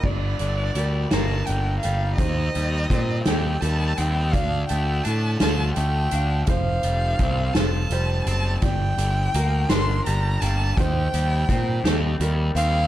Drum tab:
CC |x-----|------|------|------|
HH |-xxxxx|xxxxxx|xxxxxx|xxxxxx|
SD |---o--|---o--|---o--|---o--|
BD |o-----|o-o---|o-----|o-o---|

CC |------|------|
HH |xxxxxx|xxxxxx|
SD |---o--|---o--|
BD |o-----|o-o---|